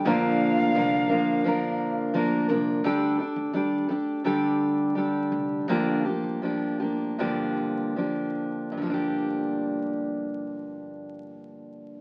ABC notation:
X:1
M:4/4
L:1/16
Q:1/4=82
K:Gm
V:1 name="Ocarina"
f12 z4 | z16 | z16 | z16 |]
V:2 name="Steel-string acoustic guitar"
[B,,D,F,B,DB]4 [F,B,DB]2 [F,B,DB]2 [F,B,DB]4 [F,B,DB]2 [F,B,DB]2 | [D,G,DGA]2 [DGA]2 [G,DGA]2 [DGA]2 [D,G,DGA]4 [G,DGA]4 | [G,,D,F,B,DG]2 [F,B,DG]2 [F,B,DG]2 [F,B,DG]2 [G,,D,F,B,DG]4 [F,B,DG]4 | [G,,D,F,B,DG]16 |]
V:3 name="Upright bass" clef=bass
B,,,3 D,, C,,2 B,,,6 D,,2 C,,2 | D,,2 z D,, E,,2 D,,8 F,,,2 | G,,,2 z G,,,3 G,,,3 z G,,,4 z2 | G,,,16 |]